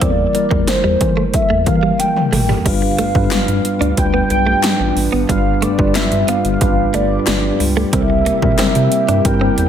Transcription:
0.01 E2 E3 G3 A#3 C4 E4 A#4 D5, kick, closed hi-hat
0.35 G3 A#3 E4 A#4, muted clean electric guitar stroke, closed hi-hat
0.51 E2 A#3, kick
0.67 C5, snare, closed hi-hat
0.84 E2 G3
1.01 E3, muted clean electric guitar stroke, kick, closed hi-hat
1.17 A3
1.34 E5, kick, closed hi-hat
1.50 E2 A3
1.66 E3 G3 A#3 A#4 F5, muted clean electric guitar stroke, kick, closed hi-hat
1.83 G3
1.99 G5, muted clean electric guitar stroke, closed hi-hat, high tom
2.17 mid tom
2.32 G#1 A3, mid tom, open hi-hat
2.49 G3, floor tom
2.65 G1 G2 G3 B3 D4 F4 G4 B4 F5, kick, closed hi-hat, crash
2.82 muted clean electric guitar stroke
2.98 A3, closed hi-hat
3.15 G2 G3 D4 F4 B4, kick
3.31 G2 B3, snare, clap, closed hi-hat
3.48 G2, muted clean electric guitar stroke, closed hi-hat
3.65 closed hi-hat
3.81 D2 D4, closed hi-hat
3.97 D2 G3 D4 F4 B4 G5, kick, closed hi-hat
4.14 B3
4.30 B1 G5, muted clean electric guitar stroke, closed hi-hat
4.47 A3
4.63 G3, snare, clap, closed hi-hat
4.80 A1, muted clean electric guitar stroke
4.96 A1, open hi-hat
5.12 G#1 B3
5.28 G1 G2 G3 D4 F4 B4 F5, kick, closed hi-hat
5.62 A3 D5, closed hi-hat
5.78 G1 G3 D4 F4 B4, muted clean electric guitar stroke, kick
5.95 G2 E5, snare, clap, closed hi-hat
6.12 G2, closed hi-hat
6.28 B3 F5, closed hi-hat
6.45 G1, closed hi-hat
6.60 A1 G3 D4 F4 B4, kick, closed hi-hat
6.94 G1 A3 D5, closed hi-hat
7.27 G1 G3, snare, clap, closed hi-hat
7.60 C#2, muted clean electric guitar stroke, open hi-hat
7.77 A3
7.92 C2 C3 G3 A#3 C4 E4 A#4 E5, kick, closed hi-hat
8.10 muted clean electric guitar stroke
8.26 A#3, closed hi-hat
8.42 A#2 G3 C4 E4 A#4, kick
8.58 C3 C4, snare, clap, closed hi-hat
8.75 C3, muted clean electric guitar stroke, closed hi-hat
8.92 closed hi-hat
9.08 G2 D4, closed hi-hat
9.24 G2 G3 C4 E4 A#4 G5, kick, closed hi-hat
9.41 C4
9.58 E2 G5, muted clean electric guitar stroke, closed hi-hat

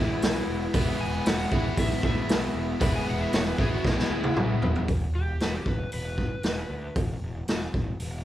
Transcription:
Already playing: D2 E3 G#3 B3 E4 G#4 B4 E5
0.22 B1, snare, open hi-hat
0.48 E1
0.73 E1 E3 G#3 B3 E4 G#4 B4 F#5, kick, open hi-hat
1.01 E1 G#5
1.26 E1 F#5, snare, open hi-hat
1.52 G#1 E3 G#3 B3 E4, kick
1.77 B1 E5, kick, open hi-hat
2.03 D2 E4 G#4 B4 E5, kick
2.29 B1, snare, open hi-hat
2.55 E1
2.80 E1 E3 G#3 B3 E4 G#4 B4 F#5 B5, kick, open hi-hat
2.96 G#5
3.07 E1 F#5
3.21 E5
3.33 E1 C#5, snare, open hi-hat
3.48 B4
3.58 G#1 E3 G#3 B3 E4 G#4, kick
3.74 F#4
3.84 B1 E4, kick, snare
3.99 snare
4.10 D2 E4 G#4 B4 E5
4.24 high tom
4.36 B1, mid tom
4.62 E1, floor tom
4.76 floor tom
4.88 E1, kick, open hi-hat
5.14 E1 G4
5.40 E1 B4, snare, open hi-hat
5.55 G4
5.66 E1 B4, kick
5.92 E1 B4, open hi-hat
6.18 kick
6.43 E1, snare, open hi-hat
6.70 D2
6.96 E1, kick, open hi-hat
7.22 E1
7.47 E1, snare, open hi-hat
7.74 E1, kick
8.00 E1, open hi-hat

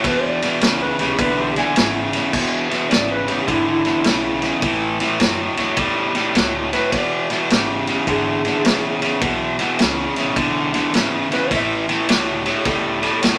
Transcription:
0.04 E1 E2 B2 B4, kick, snare, ride
0.24 D5
0.42 E2 B2, snare, ride
0.60 C#2 E2 C#3, snare, ride
0.82 B4
0.97 B1 E2 C#3 G4, snare, ride
1.19 B1 E2 D3 B4, kick, ride
1.40 G4
1.56 E2 D3 G#5, snare, ride
1.74 G#1 E2 C#3, snare, ride
2.12 E2 C#3, snare, ride
2.33 E1 E2 B2, kick, crash
2.69 E2 B2, snare, ride
2.90 G#1 E2 C#3 D5, snare, ride
3.11 B4
3.27 E2 C#3 G4, snare, ride
3.46 G#1 E2 D3 E4, kick, ride
3.69 E4
3.85 E2 D3, snare, ride
4.04 B1 E2 C#3, snare, ride
4.42 E2 C#3, snare, ride
4.62 A1 A2 E3, kick, ride
5.00 A2 E3, snare, ride
5.19 F#2 A2 F#3, snare, ride
5.56 E2 A2 F#3, snare, ride
5.77 E2 A2 G3, kick, ride
6.15 A2 G3, snare, ride
6.34 C#2 A2 F#3, snare, ride
6.73 A2 F#3 B4, snare, ride
6.92 E1 E2 B2 D5, kick, snare, ride
7.30 E2 B2, snare, ride
7.48 G#1 E2 C#3, snare, ride
7.53 G4
7.87 E2 C#3, snare, ride
8.07 G#1 E2 D3 G#4, kick, ride
8.45 E2 D3, snare, ride
8.64 B1 E2 C#3, snare, ride
9.01 E2 C#3, snare, ride
9.21 B1 E2 B2, kick, ride
9.59 E2 B2, snare, ride
9.79 C#2 E2 C#3, snare, ride
10.16 B1 E2 C#3, snare, ride
10.36 B1 E2 D3, kick, ride
10.73 E2 D3, snare, ride
10.93 G#1 E2 C#3, snare, ride
11.31 E2 C#3 B4, snare, ride
11.51 A1 A2 E3 E5, kick, snare, ride
11.88 A2 E3, snare, ride
12.07 C#2 A2 F#3 G4, snare, ride
12.46 A2 F#3, snare, ride
12.65 C#2 A2 G3 A4, kick, snare, ride
13.02 A2 G3, snare, ride
13.22 E2 A2 F#3, snare, ride

